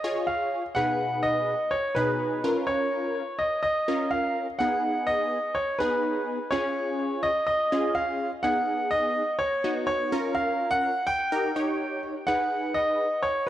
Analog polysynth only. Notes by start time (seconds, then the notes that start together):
0.04 F4 G#4 C#5
0.76 B2 D#4 G#4 B4
1.96 B2 D#4 G#4 B4
2.44 C#4 F4 A#4
3.88 C#4 F4 A#4
4.60 B3 D#4 G#4
5.80 B3 D#4 G#4
6.52 C#4 F4 G#4
7.72 C#4 F4 G#4
8.44 B3 D#4 G#4
9.64 B3 D#4 F#4
10.12 C#4 F4 A#4
11.32 D#4 G4 A#4
11.56 D#4 G4 C#5
12.28 D#4 G#4 B4